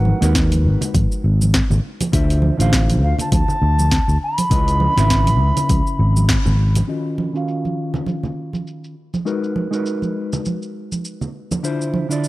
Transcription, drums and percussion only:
0.05 high conga
0.22 snare, open hi-hat, shaker
0.35 kick, snare, open hi-hat, shaker
0.51 open hi-hat, high conga, shaker
0.81 open hi-hat, low conga, shaker
0.94 kick, open hi-hat, high conga, shaker
1.12 shaker
1.41 high conga, shaker
1.54 kick, snare, open hi-hat, shaker
1.71 low conga, shaker
2.01 open hi-hat, high conga, low conga, shaker
2.13 kick, open hi-hat, shaker
2.30 open hi-hat, shaker
2.42 high conga
2.60 open hi-hat, shaker
2.73 kick, snare, open hi-hat, shaker
2.90 open hi-hat, high conga, shaker
3.19 open hi-hat, low conga, shaker
3.32 kick, open hi-hat, high conga, shaker
3.48 low conga, shaker
3.79 high conga, shaker
3.91 kick, snare, open hi-hat, shaker
4.09 shaker
4.38 open hi-hat, high conga, shaker
4.51 kick, open hi-hat, shaker
4.68 open hi-hat, shaker
4.80 high conga
4.98 snare, open hi-hat, shaker
5.10 kick, snare, open hi-hat, shaker
5.27 open hi-hat, high conga, shaker
5.57 open hi-hat, low conga, shaker
5.69 kick, open hi-hat, high conga, shaker
5.87 shaker
6.17 high conga, shaker
6.29 kick, snare, open hi-hat, shaker
6.46 low conga, shaker
6.75 open hi-hat, high conga, low conga, shaker
6.89 shaker
7.06 shaker
7.18 high conga
7.35 shaker
7.48 shaker
7.65 high conga, shaker
7.94 low conga, shaker
8.06 high conga, shaker
8.23 low conga, shaker
8.53 high conga, shaker
8.67 shaker
8.84 shaker
9.14 high conga, shaker
9.27 shaker
9.44 shaker
9.56 high conga
9.73 shaker
9.86 shaker
10.02 high conga, shaker
10.33 low conga, shaker
10.45 high conga, shaker
10.62 shaker
10.92 high conga, shaker
11.05 shaker
11.21 low conga, shaker
11.51 high conga, low conga, shaker
11.64 shaker
11.81 shaker
11.94 high conga
12.11 shaker
12.24 shaker

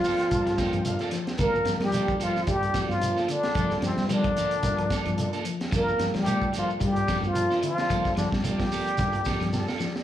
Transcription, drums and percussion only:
0.04 open hi-hat, shekere
0.19 snare, closed hi-hat, shekere
0.31 kick, closed hi-hat, shekere
0.47 snare, closed hi-hat, shekere
0.58 kick, snare, closed hi-hat, shekere
0.73 closed hi-hat, shekere
0.85 closed hi-hat, shekere
0.99 snare, closed hi-hat, shekere
1.11 snare, closed hi-hat, shekere
1.27 snare, closed hi-hat, shekere
1.38 kick, closed hi-hat, shekere
1.55 shekere
1.65 snare, closed hi-hat, shekere
1.80 snare, closed hi-hat, shekere
1.92 closed hi-hat, shekere
2.08 kick, shekere
2.20 closed hi-hat, shekere
2.36 snare, shekere
2.47 kick, closed hi-hat, shekere
2.63 closed hi-hat, shekere
2.74 kick, snare, closed hi-hat, shekere
2.90 snare, shekere
3.01 closed hi-hat, shekere
3.17 snare, shekere
3.28 closed hi-hat, shekere
3.43 snare, closed hi-hat, shekere
3.55 kick, closed hi-hat, shekere
3.70 snare, shekere
3.82 snare, closed hi-hat, shekere
3.97 snare, shekere
4.09 snare, closed hi-hat, shekere
4.24 kick, closed hi-hat, shekere
4.37 closed hi-hat, shekere
4.51 closed hi-hat, shekere
4.63 kick, snare, closed hi-hat, shekere
4.78 closed hi-hat, shekere
4.90 kick, snare, closed hi-hat, shekere
5.05 closed hi-hat, shekere
5.18 closed hi-hat, shekere
5.33 closed hi-hat, shekere
5.45 closed hi-hat, shekere
5.61 snare, closed hi-hat, shekere
5.72 kick, closed hi-hat, shekere
5.88 shekere
5.99 snare, closed hi-hat, shekere
6.14 snare, closed hi-hat, shekere
6.26 closed hi-hat, shekere
6.42 kick, shekere
6.53 closed hi-hat, shekere
6.70 shekere
6.80 kick, closed hi-hat, shekere
6.96 closed hi-hat, shekere
7.08 kick, snare, closed hi-hat, shekere
7.24 shekere
7.35 closed hi-hat, shekere
7.51 snare, shekere
7.63 closed hi-hat, shekere
7.78 snare, closed hi-hat, shekere
7.90 kick, closed hi-hat, shekere
8.05 kick, snare, shekere
8.17 snare, closed hi-hat, shekere
8.32 kick, snare, shekere
8.44 snare, closed hi-hat, shekere
8.60 kick, snare, closed hi-hat, shekere
8.72 open hi-hat, shekere
8.87 closed hi-hat, shekere
8.98 kick, snare, closed hi-hat, shekere
9.13 closed hi-hat, shekere
9.25 kick, snare, closed hi-hat, shekere
9.41 snare, closed hi-hat, shekere
9.53 snare, shekere
9.68 snare, shekere
9.80 snare, shekere
9.95 snare, shekere

